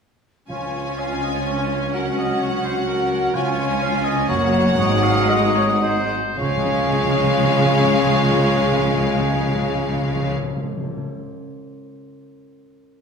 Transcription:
0.48 double bass section C#2, cello section C#2, timpani C#3, french horn section F3 C#4, viola section C#4, bassoon F4, clarinet F4, violin section F4 G#5, oboe C#5, flute G#5
0.99 bassoon C#4, oboe F5
1.23 oboe D#5
1.46 oboe C#5
1.94 french horn section F#3, bassoon F#4, clarinet F#4, violin section F#4 F#5, oboe A#4, flute F#5
2.17 oboe D#5
2.41 oboe C#5
2.64 oboe C5
2.87 oboe A#4
3.34 cello section C#2, double bass section C#2, timpani C#3, french horn section F3 C#4, viola section C#4, bassoon F4, violin section F4 G#5, clarinet F4, oboe C#5, flute G#5
3.82 bassoon C#4, oboe F5
4.05 oboe D#5
4.28 double bass section F#1, cello section F#2, french horn section F#3 A#3, viola section A#3, violin section F#4 F#5, clarinet F#4, oboe C#5, flute A#5
4.78 double bass section G#1, cello section G#2, viola section G#3, violin section D#4, french horn section D#4, oboe C#5, flute D#6
5.04 oboe F5
5.29 bassoon D#4, oboe D#5
5.55 oboe C#5
5.82 bassoon D#4, oboe C5
6.37 double bass section C#2, timpani C#3, bassoon C#3, cello section C#3, french horn section G#3 F4, viola section G#3, violin section C#4 F5, clarinet F4, oboe C#5, flute G#5
6.44 timpani C#3
6.50 timpani C#3
6.57 timpani C#3
6.64 timpani C#3
6.70 timpani C#3
6.78 timpani C#3
6.85 timpani C#3
6.91 timpani C#3
6.98 timpani C#3
7.04 timpani C#3
7.11 timpani C#3
7.18 timpani C#3
7.24 timpani C#3
7.31 timpani C#3
7.37 timpani C#3
7.44 timpani C#3
7.51 timpani C#3
7.58 timpani C#3
7.65 timpani C#3
7.72 timpani C#3
7.79 timpani C#3
7.85 timpani C#3
7.92 timpani C#3
7.98 timpani C#3
8.05 timpani C#3
8.12 timpani C#3
8.18 timpani C#3
8.25 timpani C#3
8.31 timpani C#3
8.38 timpani C#3
8.44 timpani C#3
8.51 timpani C#3
8.57 timpani C#3
8.65 timpani C#3
8.72 timpani C#3
8.79 timpani C#3
8.86 timpani C#3
8.94 timpani C#3
9.00 timpani C#3
9.07 timpani C#3
9.14 timpani C#3
9.20 timpani C#3
9.27 timpani C#3
9.33 timpani C#3
9.40 timpani C#3
9.48 timpani C#3
9.54 timpani C#3
9.61 timpani C#3
9.68 timpani C#3
9.75 timpani C#3
9.82 timpani C#3
9.89 timpani C#3
9.95 timpani C#3
10.02 timpani C#3
10.08 timpani C#3
10.15 timpani C#3
10.22 timpani C#3
10.29 timpani C#3
10.36 timpani C#3
10.43 timpani C#3
10.50 timpani C#3
10.56 timpani C#3
10.64 timpani C#3
10.70 timpani C#3
10.77 timpani C#3
10.84 timpani C#3
10.91 timpani C#3
10.97 timpani C#3

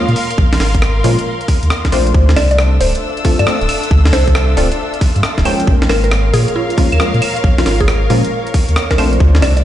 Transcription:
Already playing: string section A#4 F5 C6
0.08 sub bass A#2, closed hi-hat
0.16 open hi-hat
0.31 closed hi-hat
0.38 sub bass A#1, kick
0.53 snare, open hi-hat
0.60 sub bass G#1, snare, open hi-hat
0.75 kick, closed hi-hat
0.82 cross-stick
1.04 sub bass A#2, synth stab F3 G#3 A#3 C#4 F4, open hi-hat
1.19 closed hi-hat
1.41 closed hi-hat
1.48 kick, open hi-hat
1.63 sub bass D#2, closed hi-hat
1.70 cross-stick
1.85 kick, snare, closed hi-hat
1.92 sub bass A#1, synth stab A3 C4 D4 F4 C5, open hi-hat
2.07 closed hi-hat
2.14 sub bass D2, string section D4, string machine E5 F5 A5 C6, kick
2.29 snare
2.36 sub bass C2, string section A4, synth pluck D5, snare, open hi-hat, claves
2.51 synth pluck D5, closed hi-hat
2.59 cross-stick
2.64 string section E6
2.81 sub bass D1, synth pluck C5, open hi-hat
2.95 closed hi-hat
3.17 closed hi-hat
3.25 synth stab A3 C4 D4 F4 A4, kick, open hi-hat
3.39 sub bass G2, synth pluck D5, closed hi-hat, claves
3.47 synth stab A3 C4 D4 F4 A4, cross-stick
3.61 sub bass D1, closed hi-hat
3.69 open hi-hat, claves
3.83 closed hi-hat
3.91 sub bass D2, kick
4.05 snare, open hi-hat
4.13 sub bass C2, synth pluck C5, snare, open hi-hat
4.28 kick, closed hi-hat
4.35 cross-stick
4.57 sub bass D1, synth stab A3 C4 D4 F4 A4, open hi-hat
4.72 closed hi-hat
4.94 closed hi-hat
5.01 kick, open hi-hat
5.16 sub bass G2, closed hi-hat
5.23 cross-stick
5.38 sub bass D1, kick, snare, closed hi-hat
5.45 synth stab F3 G#3 A#3 C#4 G5, open hi-hat, claves
5.60 closed hi-hat
5.67 sub bass A#1, string section A#4, string machine C#5, kick
5.82 snare
5.89 sub bass G#1, synth pluck A#4, string section F5, snare, open hi-hat, claves
6.04 synth pluck A#4, closed hi-hat
6.12 cross-stick
6.33 sub bass A#2, synth pluck G#4, open hi-hat
6.48 closed hi-hat
6.56 synth pluck F4
6.70 closed hi-hat
6.78 synth stab F3 G#3 A#3 C#4 F4, kick, open hi-hat
6.92 sub bass D#2, closed hi-hat, claves
7.00 synth stab F3 G#3 A#3 C#4 F4, cross-stick
7.14 sub bass A#2, closed hi-hat
7.22 open hi-hat, claves
7.36 closed hi-hat
7.44 sub bass A#1, string machine C#6, kick
7.58 synth pluck F4, snare, open hi-hat
7.66 sub bass G#1, synth pluck F4, snare, open hi-hat
7.80 synth pluck G#4, kick, closed hi-hat
7.88 cross-stick
8.10 sub bass A#2, synth stab F3 G#3 A#3 C#4 F4, open hi-hat
8.25 closed hi-hat
8.47 closed hi-hat
8.54 kick, open hi-hat
8.69 sub bass D#2, closed hi-hat
8.76 cross-stick
8.91 synth pluck A#4, kick, snare, closed hi-hat
8.98 sub bass A#1, synth stab A3 C4 D4 F4 C5, open hi-hat, claves
9.13 closed hi-hat
9.20 sub bass D2, string section D4, string machine E5 A5 C6, kick
9.35 string section E6, snare
9.42 sub bass C2, string section A4, synth pluck D5, snare, open hi-hat, claves
9.57 synth pluck D5, closed hi-hat

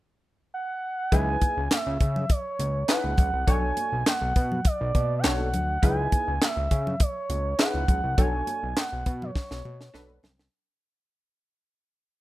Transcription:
0.54 soft synth lead F#5
1.12 analog synth bass C#2, analog polysynth D#4 E4 G#4 B4, soft synth lead G#5, kick, closed hi-hat, muted conga, low conga
1.41 kick, closed hi-hat, muted conga, high conga
1.57 analog synth bass C#2
1.71 soft synth lead E5, snare, clap, closed hi-hat, muted conga, high conga
1.87 analog synth bass C#2
2.00 analog synth bass C#3, kick, closed hi-hat, muted conga
2.16 low conga
2.30 soft synth lead C#5, kick, closed hi-hat
2.59 analog synth bass C#2, closed hi-hat, muted conga, high conga
2.88 analog polysynth D#4 E4 G#4 B4, soft synth lead F#5, snare, clap, closed hi-hat, muted conga
3.04 analog synth bass C#2, high conga
3.18 analog synth bass C#2, kick, closed hi-hat, muted conga, low conga
3.33 analog synth bass C2
3.47 analog synth bass B1, analog polysynth D4 F#4 A4 C#5, soft synth lead G#5, kick, closed hi-hat, muted conga, low conga
3.77 closed hi-hat, muted conga, high conga
3.92 analog synth bass B1
4.06 soft synth lead F#5, snare, clap, closed hi-hat, muted conga, high conga
4.21 analog synth bass B1
4.36 analog synth bass B2, kick, closed hi-hat, muted conga
4.52 low conga
4.65 soft synth lead D5, kick, closed hi-hat
4.81 analog synth bass B1
4.95 analog synth bass B2, kick, closed hi-hat, muted conga, high conga
5.19 soft synth lead G#5
5.24 analog synth bass B1, analog polysynth D4 F#4 A4 C#5, soft synth lead F#5, snare, clap, closed hi-hat
5.40 high conga
5.53 analog synth bass D2, closed hi-hat, muted conga, low conga
5.82 analog synth bass C#2, analog polysynth D#4 E4 G#4 B4, soft synth lead G#5, kick, closed hi-hat, muted conga, low conga
6.12 kick, closed hi-hat, muted conga, high conga
6.28 analog synth bass C#2
6.42 soft synth lead E5, snare, clap, closed hi-hat, high conga
6.57 analog synth bass C#2
6.71 analog synth bass C#3, kick, closed hi-hat, muted conga
6.87 low conga
7.00 soft synth lead C#5, kick, closed hi-hat, muted conga
7.30 analog synth bass C#2, closed hi-hat, high conga
7.59 analog polysynth D#4 E4 G#4 B4, soft synth lead F#5, snare, clap, closed hi-hat, muted conga
7.74 analog synth bass C#2, high conga
7.88 analog synth bass C#2, kick, closed hi-hat, low conga
8.04 analog synth bass C2
8.18 analog synth bass B1, analog polysynth D4 F#4 A4 C#5, soft synth lead G#5, kick, closed hi-hat, muted conga, low conga
8.47 closed hi-hat, muted conga, high conga
8.63 analog synth bass B1
8.77 soft synth lead F#5, snare, clap, closed hi-hat, high conga
8.93 analog synth bass B1
9.06 analog synth bass B2, kick, closed hi-hat
9.22 soft synth lead C#5, low conga
9.36 kick, snare
9.51 analog synth bass B1, snare
9.65 analog synth bass B2, high conga
9.81 snare
9.94 analog synth bass B1, analog polysynth D4 F#4 A4 B4, snare, muted conga
10.10 high conga
10.23 analog synth bass C2, snare, muted conga, low conga
10.39 snare

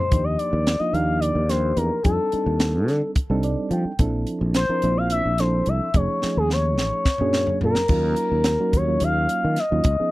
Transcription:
Already playing: analog synth lead C5
0.11 fretless electric bass D#2, reed electric piano F3 A#3 D4 D#4 G4, kick, closed hi-hat
0.24 analog synth lead D#5
0.38 analog synth lead D5, closed hi-hat
0.53 fretless electric bass D#2
0.67 snare, closed hi-hat
0.79 reed electric piano F3 A#3 D4 D#4 F4, analog synth lead D#5, muted fretless electric bass stroke
0.93 fretless electric bass D#2, reed electric piano F3 A#3 D4 D#4 G4, analog synth lead F5, closed hi-hat
1.20 analog synth lead D5, closed hi-hat
1.35 fretless electric bass D#2
1.48 reed electric piano F3 A#3 D4 D#4 G4, analog synth lead C5, snare, closed hi-hat
1.77 fretless electric bass E2, analog synth lead A#4, closed hi-hat
2.04 fretless electric bass F2, reed electric piano G3 C4 D4 D#4 A4, analog synth lead A4, kick, closed hi-hat
2.32 reed electric piano G3 C4 D4 D#4 A4, muted fretless electric bass stroke, closed hi-hat
2.46 fretless electric bass D#2
2.60 snare, closed hi-hat
2.88 fretless electric bass D3, snare, closed hi-hat
3.16 muted fretless electric bass stroke, kick, closed hi-hat
3.30 fretless electric bass C2, reed electric piano G3 C4 D4 D#4 A4
3.43 reed electric piano D5, closed hi-hat
3.71 fretless electric bass F3, reed electric piano G5, closed hi-hat
3.85 muted fretless electric bass stroke
3.99 fretless electric bass A#1, reed electric piano F3 C4 D4 E4 A4, kick, closed hi-hat
4.27 closed hi-hat
4.41 fretless electric bass A#1
4.54 analog synth lead C5, snare, closed hi-hat
4.69 reed electric piano F3 C4 D4 E4 A#4
4.82 fretless electric bass A#1, reed electric piano F3 C4 D4 E4 C5, closed hi-hat
4.97 analog synth lead F5
5.10 analog synth lead E5, closed hi-hat
5.26 fretless electric bass A#1
5.38 reed electric piano F3 C4 D4 E4 A4, analog synth lead C5, snare, closed hi-hat
5.66 fretless electric bass C2, analog synth lead E5, closed hi-hat
5.94 fretless electric bass F1, reed electric piano F3 A3 C#4 D#4 G#4, analog synth lead C#5, kick, closed hi-hat
6.22 reed electric piano F3 A3 C#4 D#4 G#4, muted fretless electric bass stroke, snare
6.37 fretless electric bass D#2, analog synth lead G#4
6.50 analog synth lead C#5, snare
6.78 fretless electric bass A1, snare
7.05 muted fretless electric bass stroke, kick, snare
7.18 fretless electric bass F#2, reed electric piano F#3 A#3 C#4 D4 G#4, mid tom
7.33 snare
7.47 floor tom
7.61 fretless electric bass A#2, analog synth lead A#4, floor tom
7.75 muted fretless electric bass stroke, snare
7.88 fretless electric bass D#2, reed electric piano F#3 A#3 C#4 D#4 F4, kick, crash
8.16 closed hi-hat
8.32 fretless electric bass D#2
8.44 snare, closed hi-hat
8.60 reed electric piano F#3 A#3 C#4 D#4 F#4
8.73 fretless electric bass D#2, analog synth lead C#5, kick, closed hi-hat
8.87 reed electric piano F#3 A#3 C#4 D#4 F4
9.00 fretless electric bass D#2, analog synth lead F5, closed hi-hat
9.29 closed hi-hat
9.45 fretless electric bass D#3
9.56 analog synth lead D#5, snare, closed hi-hat
9.71 fretless electric bass D#2, reed electric piano F#3 A#3 C#4 D#4 F4
9.84 fretless electric bass C#2, kick, closed hi-hat
9.99 reed electric piano F3 B3 C#4 D#4 G#4

